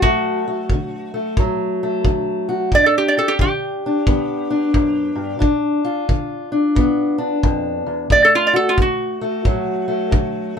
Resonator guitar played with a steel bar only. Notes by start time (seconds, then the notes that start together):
0.02 F#4
2.75 D5
2.86 A4
2.98 G4
3.08 D5
3.19 A4
3.28 G4
3.41 G4
8.12 D5
8.25 A4
8.35 F4
8.47 D5
8.56 A4
8.69 F4
8.82 F#4